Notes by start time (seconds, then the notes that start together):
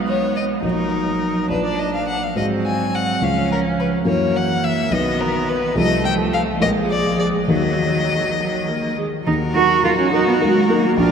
Already playing: B1 F#3 G#3 B3 D#4 D#5
0.08 C#5
0.36 D#5
0.62 A#1 F#3 D#4 A#4 D#5
1.49 A#1 F3 D4 F4 B4 D5
1.65 D5
1.79 D#5
1.94 F5
2.08 F#5
2.23 F5
2.35 G#2 F#3 G#3 C4 F#4 C5 D#5
2.66 G#5
2.95 F#5
3.21 C#2 F3 G#3 C#4 F4 C#5 F5
3.52 A#4
3.80 B4
4.05 F#2 E3 F#3 A#3 E4 A#4 C#5
4.36 F#5
4.64 E5
4.90 B1 D#3 F#3 B3 D#4 B4 D#5
5.21 A#4
5.49 B4
5.75 C2 F3 A3 F4 A4 D#5
6.05 G5
6.34 F5
6.60 A#1 F3 G#3 F4 A#4 D#5
6.91 D5
7.19 D5
7.48 D#2 D#3 F#3 D#4 A#4 D#5
8.38 F#3
8.68 A#3
8.98 G#3
9.26 D#2 D#4 F#4 A#4
9.55 F#3 D#4 F#4 A#4
9.84 F#3 D#4 F4 A#4
9.99 C#4
10.12 F#3 D#4 A#4
10.28 B3
10.41 F#3 G#3 D#4 A#4
10.69 F#3 A#3 D#4 A#4
10.97 A#1 D4 F4 A#4